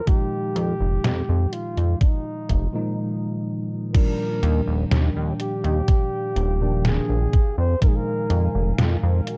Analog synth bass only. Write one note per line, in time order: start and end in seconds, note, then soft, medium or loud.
0.55 0.74 F2 loud
0.80 0.98 F1 loud
1.04 1.23 F2 loud
1.29 1.47 F2 medium
1.77 1.95 F2 medium
2.49 2.68 F1 medium
4.43 4.61 D#2 loud
4.68 4.85 D#1 loud
4.91 5.10 D#2 loud
5.16 5.34 D#2 loud
5.64 5.82 D#2 medium
6.36 6.99 D#1 loud
7.09 7.27 A#1 medium
7.58 7.75 F2 medium
8.30 8.48 F2 loud
8.55 8.72 F1 loud
8.78 8.97 F2 loud
9.03 9.21 F2 loud